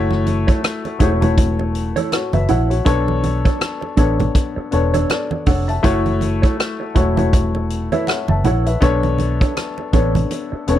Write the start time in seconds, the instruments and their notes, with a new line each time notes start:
Already playing: fingered electric bass F#1, grand piano A3 E4 F#4 C#5, clean electric guitar E4 A4 C#5
0.11 cross-stick, muted conga, high conga
0.26 muted clean electric guitar stroke, closed hi-hat, high conga
0.47 clean electric guitar E4 A4 C#5, kick, closed hi-hat
0.63 muted clean electric guitar stroke, cross-stick, closed hi-hat, muted conga
0.85 muted clean electric guitar stroke, closed hi-hat, muted conga
0.99 fingered electric bass E1, grand piano A3 E4 F#4 C#5, clean electric guitar E4 A4 C#5, kick, closed hi-hat
1.21 grand piano A3 E4 F#4 C#5, muted clean electric guitar stroke, closed hi-hat, high conga, low conga
1.38 muted clean electric guitar stroke, kick, closed hi-hat, muted conga
1.59 muted clean electric guitar stroke, muted conga
1.75 closed hi-hat
1.96 clean electric guitar E4 A4 C#5, closed hi-hat, high conga
2.12 grand piano F#4 C#5, cross-stick, closed hi-hat, muted conga
2.33 fingered electric bass F#1, grand piano B4 E5, muted clean electric guitar stroke, closed hi-hat, muted conga, high conga
2.48 fingered electric bass A#1, clean electric guitar E4 A4 C#5, grand piano C#5 F#5, closed hi-hat, low conga
2.70 grand piano F#4 C#5, muted clean electric guitar stroke, closed hi-hat
2.85 fingered electric bass B1, grand piano B3 D4 A4 C#5, clean electric guitar D4 A4 C#5, kick, closed hi-hat, muted conga, low conga
3.08 muted conga, high conga
3.23 muted clean electric guitar stroke, closed hi-hat, high conga
3.45 clean electric guitar D4 A4 C#5, kick, closed hi-hat
3.61 muted clean electric guitar stroke, cross-stick, closed hi-hat, muted conga
3.81 muted clean electric guitar stroke, muted conga
3.97 fingered electric bass A1, grand piano B3 D4 A4 C#5, clean electric guitar D4 A4 C#5, kick, closed hi-hat
4.19 muted clean electric guitar stroke, closed hi-hat, high conga, low conga
4.35 muted clean electric guitar stroke, kick, closed hi-hat, muted conga
4.56 muted clean electric guitar stroke, muted fingered electric bass stroke
4.71 fingered electric bass E1, grand piano B3 D4 A4 C#5, closed hi-hat
4.94 clean electric guitar D4 A4 C#5, closed hi-hat, high conga
5.09 grand piano A4 D5, cross-stick, closed hi-hat, muted conga
5.31 muted clean electric guitar stroke, muted conga, high conga
5.46 fingered electric bass F1, clean electric guitar D4 A4 C#5, grand piano C#5 F#5, kick, open hi-hat, low conga
5.68 grand piano E5 A5, muted clean electric guitar stroke, closed hi-hat
5.83 fingered electric bass F#1, grand piano A3 E4 F#4 C#5, clean electric guitar E4 A4 C#5, kick, closed hi-hat, low conga
6.06 closed hi-hat, high conga
6.21 muted clean electric guitar stroke, closed hi-hat, high conga
6.42 clean electric guitar E4 A4 C#5, kick, closed hi-hat
6.59 muted clean electric guitar stroke, cross-stick, closed hi-hat
6.80 muted clean electric guitar stroke
6.95 fingered electric bass E1, grand piano A3 E4 F#4 C#5, clean electric guitar E4 A4 C#5, kick, closed hi-hat
7.16 grand piano A3 E4 F#4 C#5, muted clean electric guitar stroke, closed hi-hat, high conga, low conga
7.33 muted clean electric guitar stroke, kick, closed hi-hat, muted conga
7.55 muted clean electric guitar stroke, muted conga
7.70 closed hi-hat
7.92 clean electric guitar E4 A4 C#5, grand piano B4 E5, closed hi-hat, high conga
8.07 grand piano C#5 F#5, cross-stick, closed hi-hat, muted conga
8.28 fingered electric bass F#1, grand piano E5 A5, muted clean electric guitar stroke, muted conga, high conga
8.44 fingered electric bass A#1, clean electric guitar E4 A4 C#5, grand piano C#5 F#5, closed hi-hat, low conga
8.66 grand piano B4 E5, muted clean electric guitar stroke, closed hi-hat
8.80 fingered electric bass B1, grand piano B3 D4 A4 C#5, clean electric guitar D4 A4 C#5, kick, closed hi-hat, low conga
9.03 closed hi-hat, high conga
9.18 muted clean electric guitar stroke, closed hi-hat, high conga
9.41 clean electric guitar D4 A4 C#5, kick, closed hi-hat
9.57 muted clean electric guitar stroke, cross-stick, closed hi-hat, muted conga
9.78 muted clean electric guitar stroke, muted conga
9.93 fingered electric bass A1, grand piano B3 D4 A4 C#5, clean electric guitar D4 A4 C#5, kick, closed hi-hat
10.15 muted clean electric guitar stroke, closed hi-hat, high conga, low conga
10.31 muted clean electric guitar stroke, closed hi-hat, muted conga
10.52 muted clean electric guitar stroke, muted fingered electric bass stroke
10.67 fingered electric bass E1, grand piano B3 C#4 A4 C#5, closed hi-hat
10.74 grand piano D4